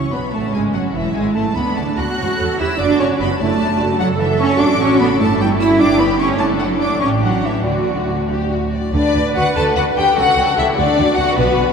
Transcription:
0.00 0.13 C#2 medium
0.00 0.13 C#4 medium
0.00 0.13 E4 soft
0.00 0.13 C#6 medium
0.12 0.34 B1 soft
0.12 0.34 B3 medium
0.12 0.21 D4 soft
0.12 0.33 B5 soft
0.33 0.54 A1 medium
0.33 0.54 A3 medium
0.33 0.93 C#4 soft
0.33 0.54 A5 medium
0.53 0.63 G#1 medium
0.53 0.74 G#3 medium
0.53 0.75 G#3 medium
0.53 0.62 G#5 medium
0.73 0.82 F#1 soft
0.73 0.95 F#3 medium
0.73 0.95 F#4 soft
0.73 0.81 F#5 soft
0.94 1.15 E1 medium
0.94 1.14 E3 medium
0.94 1.56 E4 medium
0.94 1.15 E4 medium
0.94 1.15 E5 medium
1.14 1.35 G#1 medium
1.14 1.35 G#3 medium
1.14 1.35 G#5 medium
1.34 1.43 A1 medium
1.34 1.56 A3 medium
1.34 1.44 A3 medium
1.34 1.55 A5 medium
1.55 1.65 D2 medium
1.55 1.77 B3 medium
1.55 2.19 D4 medium
1.55 1.64 F#5 soft
1.55 1.77 B5 medium
1.76 1.85 D2 soft
1.76 1.99 A3 medium
1.76 1.85 F#5 soft
1.76 1.98 A5 medium
1.98 2.06 D2 soft
1.98 2.60 F#4 medium
1.98 2.06 F#5 soft
1.98 2.60 F#6 medium
2.19 2.28 E2 medium
2.19 2.39 C#4 medium
2.19 2.27 C#5 soft
2.39 2.48 E2 medium
2.39 2.60 A4 medium
2.39 2.47 C#5 soft
2.59 2.68 E2 medium
2.59 2.80 E4 medium
2.59 2.68 G4 medium
2.59 2.67 C#5 medium
2.59 2.79 E6 medium
2.79 2.88 F#1 medium
2.79 2.99 D4 medium
2.79 3.39 F#4 medium
2.79 2.87 D5 medium
2.79 3.00 D6 medium
2.99 3.09 F#1 medium
2.99 3.20 C#4 medium
2.99 3.07 D5 medium
2.99 3.07 C#6 medium
3.19 3.28 F#1 medium
3.19 3.28 B3 medium
3.19 3.27 D5 soft
3.19 3.40 B5 medium
3.39 3.48 F#1 medium
3.39 3.99 A3 medium
3.39 3.60 E4 medium
3.39 3.48 D5 medium
3.39 3.98 A5 medium
3.59 3.68 F#1 medium
3.59 3.79 D4 medium
3.59 3.68 D5 medium
3.80 3.88 F#1 medium
3.80 4.00 F#4 medium
3.80 3.88 D5 medium
4.00 4.56 F#1 medium
4.00 4.08 F#3 medium
4.00 5.76 A4 medium
4.00 4.61 A4 medium
4.00 4.08 F#5 medium
4.20 4.28 E3 medium
4.20 4.39 E5 medium
4.40 4.60 C#4 medium
4.40 4.60 C#6 medium
4.60 5.19 A1 medium
4.60 4.80 D4 medium
4.60 5.20 F#4 medium
4.60 4.80 D6 medium
4.80 5.00 C#4 medium
4.80 5.00 C#6 medium
5.00 5.08 B3 medium
5.00 5.20 B5 medium
5.20 5.80 G1 medium
5.20 5.28 A3 loud
5.20 6.38 E4 medium
5.20 5.40 A5 medium
5.40 5.60 G3 medium
5.40 5.48 G5 medium
5.59 5.79 E4 medium
5.59 5.68 E6 medium
5.79 6.39 G1 medium
5.79 5.99 D4 medium
5.79 6.39 G4 medium
5.79 5.99 D6 medium
5.99 6.19 B3 medium
5.99 6.20 B5 medium
6.19 6.39 C#4 medium
6.19 6.28 C#6 medium
6.39 6.98 F#1 medium
6.39 6.60 A3 medium
6.39 7.63 D4 medium
6.39 6.97 A4 medium
6.39 6.47 A5 medium
6.59 6.80 F#3 medium
6.59 6.67 F#5 medium
6.80 7.01 D4 medium
6.80 7.01 D6 medium
7.00 7.65 A1 medium
7.00 7.09 C#4 medium
7.00 7.65 G4 medium
7.00 7.08 C#6 medium
7.22 7.43 F#3 medium
7.22 7.43 F#5 medium
7.44 7.65 E3 medium
7.44 7.66 E5 medium
7.65 8.71 D2 medium
7.65 8.30 D3 medium
7.65 8.25 F#4 medium
7.65 8.60 F#4 medium
7.65 8.28 D5 medium
8.30 8.50 G4 medium
8.52 8.73 F#4 medium
8.73 8.92 D5 medium
8.93 9.02 D2 medium
8.93 9.02 D3 medium
8.93 9.32 D4 medium
8.93 10.13 B4 medium
8.93 9.32 D5 medium
9.14 9.23 D2 medium
9.14 9.22 D3 medium
9.35 9.44 D2 medium
9.35 9.43 D3 medium
9.35 9.44 F#4 medium
9.35 9.56 F#5 medium
9.55 9.64 D2 medium
9.55 9.63 D3 medium
9.55 9.76 A4 medium
9.55 9.64 A5 medium
9.76 9.85 D2 medium
9.76 9.84 D3 medium
9.76 9.84 F#4 medium
9.76 9.85 F#5 medium
9.96 10.04 D2 medium
9.96 10.05 D3 medium
9.96 10.17 G4 medium
9.96 10.17 G5 medium
10.17 10.25 C#2 medium
10.17 10.25 C#3 medium
10.17 10.58 F#4 medium
10.17 10.78 A4 medium
10.17 10.57 F#5 medium
10.38 10.46 C#2 medium
10.38 10.46 C#3 medium
10.58 10.66 C#2 medium
10.58 10.66 C#3 medium
10.58 10.78 E4 medium
10.58 10.66 E5 medium
10.78 10.86 D2 medium
10.78 10.86 D3 medium
10.78 11.17 D4 medium
10.78 11.73 F#4 medium
10.78 11.17 D5 medium
10.98 11.07 D2 medium
10.98 11.06 D3 medium
11.17 11.26 D2 medium
11.17 11.25 D3 medium
11.17 11.37 F#4 medium
11.17 11.37 F#5 medium
11.37 11.46 B1 medium
11.37 11.45 B2 medium
11.37 11.73 B3 medium
11.37 11.73 B4 medium
11.58 11.66 B1 medium
11.58 11.66 B2 medium

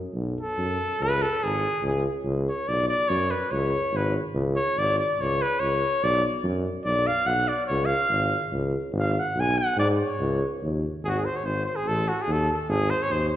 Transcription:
0.14 0.38 B1 medium
0.41 1.04 A4 loud
0.58 0.81 F#2 medium
1.01 1.24 C#2 medium
1.01 1.23 B4 loud
1.22 1.45 A4 loud
1.43 1.66 G#1 medium
1.43 1.84 G#4 loud
1.83 2.06 C#2 medium
1.83 2.05 G#4 medium
2.24 2.48 C#2 loud
2.49 2.70 C#5 medium
2.68 2.91 B1 medium
2.68 2.88 D5 loud
2.89 3.10 D5 loud
3.08 3.33 F#2 medium
3.08 3.32 C#5 loud
3.31 3.53 B4 medium
3.51 3.75 C#2 medium
3.51 3.98 C#5 loud
3.93 4.16 G#1 medium
3.93 4.16 B4 medium
4.35 4.58 C#2 loud
4.56 4.80 C#5 loud
4.77 5.00 G#1 loud
4.77 4.98 D5 loud
4.98 5.22 D5 medium
5.20 5.43 C#2 loud
5.20 5.44 C#5 loud
5.42 5.61 B4 loud
5.60 5.84 C#2 medium
5.60 6.05 C#5 medium
6.03 6.26 B1 loud
6.03 6.24 D5 loud
6.44 6.67 F#2 loud
6.85 7.08 B1 medium
6.85 7.08 D5 loud
7.07 7.28 F5 loud
7.26 7.49 B1 medium
7.26 7.49 F#5 loud
7.48 7.66 D5 medium
7.67 7.93 C#2 medium
7.67 7.87 C#5 medium
7.85 8.50 F5 loud
8.09 8.33 G#1 medium
8.52 8.75 C#2 medium
8.93 9.16 G#1 loud
9.00 9.21 F5 medium
9.20 9.42 F#5 medium
9.35 9.58 B1 loud
9.40 9.60 G#5 loud
9.58 9.78 F#5 loud
9.77 10.00 G#2 loud
9.77 9.88 D5 loud
9.96 10.55 C#5 medium
10.20 10.42 C#2 loud
10.63 10.85 D#2 medium
11.04 11.26 G#1 medium
11.04 11.18 F#4 medium
11.04 11.09 G#4 medium
11.17 11.27 G#4 medium
11.25 11.38 C5 medium
11.37 11.47 C#5 medium
11.43 11.66 G#1 medium
11.43 11.65 C5 medium
11.65 11.77 C5 medium
11.76 11.89 G#4 medium
11.84 12.07 A1 medium
11.84 12.10 A4 loud
12.08 12.23 F#4 medium
12.22 12.33 G#4 medium
12.27 12.49 D#2 medium
12.32 12.50 A4 loud
12.53 12.72 A4 medium
12.69 12.91 G#1 loud
12.69 12.92 G#4 loud
12.90 13.04 C5 medium
13.03 13.13 C#5 medium
13.10 13.32 D#2 medium
13.10 13.28 C5 loud
13.28 13.37 C5 medium

